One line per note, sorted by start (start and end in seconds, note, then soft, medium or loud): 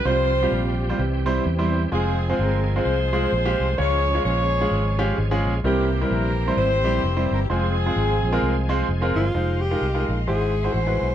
0.05 0.45 C2 medium
0.05 0.76 C3 medium
0.05 0.97 F3 medium
0.05 0.30 G3 medium
0.05 0.97 G3 medium
0.05 0.30 C4 medium
0.05 0.97 C4 medium
0.05 0.30 F4 medium
0.05 0.96 F4 medium
0.05 0.12 F#4 medium
0.05 0.51 G4 medium
0.05 0.52 C5 loud
0.05 0.30 C5 medium
0.12 0.98 G4 medium
0.43 0.71 G3 medium
0.43 0.71 C4 medium
0.43 0.71 F4 medium
0.43 0.71 G4 medium
0.52 0.92 A#1 medium
0.52 1.42 C4 medium
0.52 1.46 G4 medium
0.89 0.99 G3 medium
0.89 0.99 C4 medium
0.89 0.99 F4 medium
0.89 0.99 C5 medium
0.98 1.39 C2 medium
0.98 1.69 C3 medium
0.98 1.90 E3 medium
0.98 1.90 G3 medium
0.98 1.90 C4 medium
0.98 1.90 G4 medium
1.26 1.43 G3 medium
1.26 1.43 C4 medium
1.26 1.43 E4 medium
1.26 1.43 C5 medium
1.46 1.85 E2 medium
1.59 1.80 G3 medium
1.59 1.80 C4 medium
1.59 1.80 E4 medium
1.59 1.80 C5 medium
1.92 2.32 F1 loud
1.92 3.75 F3 medium
1.92 2.16 G#3 medium
1.92 3.74 G#3 medium
1.92 2.16 C4 medium
1.92 3.75 C4 medium
1.92 2.82 C4 medium
1.92 2.16 F4 medium
1.92 2.39 F4 medium
1.92 3.75 G#4 medium
1.92 2.36 G#4 medium
1.92 2.17 C5 medium
2.29 2.58 G#3 medium
2.29 2.58 C4 medium
2.29 2.58 F4 medium
2.29 2.58 C5 medium
2.39 2.79 G1 medium
2.39 2.84 F4 medium
2.39 2.85 A#4 medium
2.76 2.96 G#3 medium
2.76 2.96 C4 medium
2.76 2.96 F4 medium
2.76 2.96 C5 medium
2.84 3.25 C2 medium
2.84 3.75 F4 medium
2.84 3.75 G#4 medium
2.84 3.78 C5 loud
3.13 3.30 G#3 medium
3.13 3.30 C4 medium
3.13 3.30 F4 medium
3.13 3.30 G#4 medium
3.32 3.56 A#1 medium
3.45 3.66 G#3 medium
3.45 3.67 C4 medium
3.45 3.67 F4 medium
3.45 3.67 G4 medium
3.60 3.76 C2 medium
3.78 4.18 C#2 loud
3.78 4.48 C#3 medium
3.78 5.60 F3 medium
3.78 4.02 G#3 medium
3.78 5.60 G#3 medium
3.78 4.02 C#4 medium
3.78 5.60 C#4 medium
3.78 4.02 F4 medium
3.78 4.25 F4 medium
3.78 5.60 G#4 medium
3.78 4.24 G#4 medium
3.78 4.23 C#5 loud
3.78 4.03 C#5 medium
4.15 4.43 G#3 medium
4.15 4.43 C#4 medium
4.15 4.43 F4 medium
4.15 4.43 C#5 medium
4.24 4.64 A#1 medium
4.24 5.14 F4 medium
4.24 5.14 G#4 medium
4.24 5.13 C#5 loud
4.61 4.81 G#3 medium
4.61 4.81 C#4 medium
4.61 4.82 F4 medium
4.61 4.82 G#4 medium
4.71 5.11 G#1 medium
4.99 5.15 G#3 medium
4.99 5.16 C#4 medium
4.99 5.16 F4 medium
4.99 5.16 G4 medium
5.18 5.41 G#1 loud
5.31 5.52 G#3 medium
5.31 5.52 C#4 medium
5.31 5.52 F4 medium
5.31 5.52 G#4 medium
5.45 5.61 A#1 medium
5.64 6.03 C2 loud
5.64 6.34 C3 medium
5.64 5.71 D#3 medium
5.64 5.88 G3 medium
5.64 6.53 A#3 medium
5.64 7.46 A#3 medium
5.64 5.88 C4 medium
5.64 7.46 C4 medium
5.64 5.88 E4 medium
5.64 6.10 E4 medium
5.64 6.07 G4 medium
5.64 7.46 G4 medium
5.64 5.89 A#4 medium
5.70 7.49 E3 medium
6.01 6.29 G3 medium
6.01 6.29 C4 medium
6.01 6.29 E4 medium
6.01 6.29 A#4 medium
6.11 6.50 A#1 medium
6.11 6.56 E4 medium
6.11 6.56 G4 medium
6.11 6.57 A#4 loud
6.48 6.67 G3 medium
6.48 6.68 C4 medium
6.48 6.68 E4 medium
6.48 6.67 C5 medium
6.57 6.84 G#1 medium
6.57 7.46 E4 medium
6.57 7.46 G4 medium
6.57 7.30 C5 loud
6.84 7.00 A#1 medium
6.84 7.01 G3 medium
6.84 7.01 C4 medium
6.84 7.01 E4 medium
6.84 7.01 G4 medium
7.04 7.27 F1 medium
7.17 7.38 G3 medium
7.17 7.38 C4 medium
7.17 7.38 E4 medium
7.17 7.38 C5 medium
7.31 7.47 G1 medium
7.31 7.40 A#4 loud
7.49 7.89 F1 loud
7.49 9.32 F3 medium
7.49 7.74 G#3 medium
7.49 9.32 G#3 medium
7.49 7.74 C4 medium
7.49 8.85 C4 medium
7.49 9.32 C4 medium
7.49 7.74 F4 medium
7.49 8.85 F4 medium
7.49 8.84 G#4 loud
7.49 9.32 G#4 medium
7.49 7.74 C5 medium
7.86 8.14 G#3 medium
7.86 8.14 C4 medium
7.86 8.14 F4 medium
7.86 8.14 G#4 medium
7.96 8.19 G#1 medium
8.23 8.39 A#1 medium
8.32 8.53 G#3 medium
8.32 8.53 C4 medium
8.32 8.53 F4 medium
8.32 8.53 A#4 loud
8.42 8.82 C2 medium
8.69 8.86 G#3 medium
8.69 8.86 C4 medium
8.69 8.86 F4 medium
8.69 8.86 C5 medium
8.89 9.12 F1 medium
9.02 9.23 G#3 medium
9.02 9.23 C4 medium
9.02 9.23 F4 medium
9.02 9.23 A#4 medium
9.16 9.32 G1 medium
9.16 9.63 F4 medium
9.34 9.74 F1 medium
9.34 9.59 G#3 medium
9.34 9.59 D#4 medium
9.34 9.59 F4 medium
9.34 9.59 C5 medium
9.34 10.26 D#5 medium
9.34 10.27 F5 medium
9.34 11.15 C6 medium
9.61 10.08 G4 loud
9.71 9.84 G#3 medium
9.71 9.84 D#4 medium
9.71 9.83 F4 medium
9.71 9.83 A#4 medium
9.81 10.05 C2 medium
9.95 10.16 G#3 medium
9.95 10.16 D#4 medium
9.95 10.16 F4 medium
9.95 10.16 A#4 medium
10.09 10.25 A#1 medium
10.27 10.68 G#1 medium
10.27 10.98 G#2 medium
10.27 10.52 G#3 medium
10.27 10.52 E4 medium
10.27 10.52 F#4 medium
10.27 10.75 G#4 medium
10.27 10.52 C5 medium
10.27 11.15 E5 medium
10.27 11.15 F#5 medium
10.27 11.15 G#5 medium
10.64 10.76 G#3 medium
10.64 10.77 E4 medium
10.64 10.77 F#4 medium
10.64 10.77 C5 medium
10.74 10.98 A1 medium
10.74 11.15 C5 medium
10.87 11.09 G#3 medium
10.87 11.09 E4 medium
10.87 11.09 F#4 medium
10.87 11.09 B4 medium
11.02 11.15 B1 medium